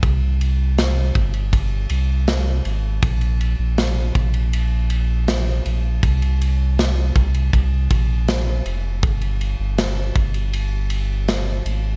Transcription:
<<
  \new Staff \with { instrumentName = "Sub bass" } { \clef bass \time 4/4 \key f \minor \tempo 4 = 80 c,4. g,,4 c,4 aes,,8 | bes,,8. bes,,8. bes,,2 bes,,8 | c,4. c,8 c,8 bes,,4 f,,8 | g,,8. g,,8. g,,2 aes,,8 | }
  \new DrumStaff \with { instrumentName = "Drums" } \drummode { \time 4/4 <bd cymr>8 cymr8 <cymr sn>8 <bd cymr>16 cymr16 <bd cymr>8 cymr8 <cymr sn>8 cymr8 | <bd cymr>16 cymr16 cymr8 <cymr sn>8 <bd cymr>16 cymr16 cymr8 cymr8 <cymr sn>8 cymr8 | <bd cymr>16 cymr16 cymr8 <cymr sn>8 <bd cymr>16 cymr16 <bd cymr>8 <bd cymr>8 <cymr sn>8 cymr8 | <bd cymr>16 cymr16 cymr8 <cymr sn>8 <bd cymr>16 cymr16 cymr8 cymr8 <cymr sn>8 cymr8 | }
>>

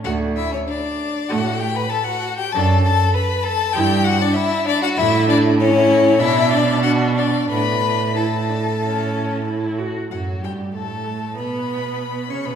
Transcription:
<<
  \new Staff \with { instrumentName = "Violin" } { \time 4/4 \key d \major \tempo 4 = 97 fis''8 e''16 cis''16 d''4 fis''8 g''16 b''16 a''16 fis''8 g''16 | a''8 a''8 b''8 a''8 g''8 fis''16 d''16 e''8 d''16 fis''16 | e''8 d''8 cis''4 e''8 d''8 fis''8 d''8 | b''4 a''2~ a''8 r8 |
fis''8 g''8 a''4 b''4. cis'''16 b''16 | }
  \new Staff \with { instrumentName = "Violin" } { \time 4/4 \key d \major fis'8 e'16 cis'16 d'4 fis'8 g'16 b'16 a'16 fis'8 g'16 | a'8 a'8 b'8 a'8 g'8 fis'16 d'16 e'8 d'16 fis'16 | e'8 d'8 cis'4 e'8 d'8 fis'8 d'8 | b'4 a'2~ a'8 r8 |
fis'8 g'8 a'4 b'4. cis''16 b'16 | }
  \new Staff \with { instrumentName = "Viola" } { \time 4/4 \key d \major a8 r4. a8 r4. | d'8 r4. e'8 r4. | e'4 e'4 d'4 d'4 | d'4 e'8 d'8 cis'4 e'8 fis'8 |
fis8 g8 a4 b4. cis'16 b16 | }
  \new Staff \with { instrumentName = "Cello" } { \clef bass \time 4/4 \key d \major d,4 r4 a,4 r4 | fis,4 r4 g,4 r4 | a,2 b,2 | a,2.~ a,8 r8 |
fis,8 g,8 a,4 b,4. cis16 b,16 | }
>>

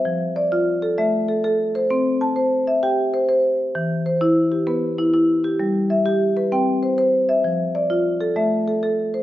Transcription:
\new Staff \with { instrumentName = "Marimba" } { \time 12/8 \key c \major \tempo 4. = 130 << { e''8 r8 d''4. a'8 e''4 a'4. c''8~ | c''8 r8 a''4. e''8 g''4 c''4. r8 | r4 c''4. g'8 b'4 e'4. g'8~ | g'8 r8 e''4. b'8 g''4 c''4. e''8~ |
e''8 r8 d''4. a'8 e''4 a'4. c''8 | } \\ { f4 r8 f'4 r8 a4 r8 a'4 r8 | c'4 r8 c''4 r8 g'4 r8 c''4 r8 | e4 r8 e'4 r8 b4 r8 e'4 r8 | g4 r8 g'4 r8 c'4 r8 c''4 r8 |
f4 r8 f'4 r8 a4 r8 a'4 r8 | } >> }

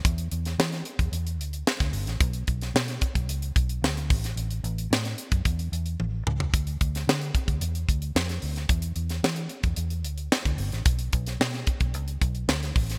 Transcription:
<<
  \new Staff \with { instrumentName = "Fingered electric bass" } { \clef bass \time 4/4 \key e \dorian \tempo 4 = 111 e,8 e,8 e8 r16 e,16 e,8 d,8 r16 d,16 g,,16 a,,16 | b,,8 b,,8 b,8 r16 b,,16 cis,8 b,,8 d,8 a,,8 | a,,8 a,,8 a,8 r16 fis,16 e,8 e,8 a,,8 cis,8 | d,8 d,8 d8 r16 d,16 e,8 d,8 f,8 d,8 |
e,8 e,8 e8 r16 e,16 e,8 d,8 r16 d,16 g,,16 a,,16 | b,,8 b,,8 b,8 r16 b,,16 cis,8 b,,8 d,8 a,,8 | }
  \new DrumStaff \with { instrumentName = "Drums" } \drummode { \time 4/4 <hh bd>16 hh16 hh16 <hh sn>16 sn16 <hh sn>16 hh16 <hh bd>16 hh16 hh16 hh16 hh16 sn16 <hh bd sn>16 hho16 <hh sn>16 | <hh bd>16 hh16 <hh bd>16 <hh sn>16 sn16 <hh sn>16 <hh bd>16 <hh bd>16 hh16 hh16 <hh bd>16 hh16 sn16 hh16 <hho bd>16 <hh sn>16 | hh16 hh16 hh16 hh16 sn16 <hh sn>16 hh16 <hh bd>16 <hh bd>16 hh16 hh16 hh16 tommh8 toml16 tomfh16 | <hh bd>16 hh16 <hh bd>16 <hh sn>16 sn16 hh16 <hh bd>16 <hh bd>16 hh16 hh16 <hh bd>16 hh16 sn16 <hh sn>16 hho16 <hh sn>16 |
<hh bd>16 hh16 hh16 <hh sn>16 sn16 hh16 hh16 <hh bd>16 hh16 hh16 hh16 hh16 sn16 <hh bd>16 hho16 <hh sn>16 | <hh bd>16 hh16 <hh bd>16 <hh sn>16 sn16 <hh sn>16 <hh bd>16 <hh bd>16 hh16 hh16 <hh bd>16 hh16 sn16 <hh sn>16 <hho bd>16 <hh sn>16 | }
>>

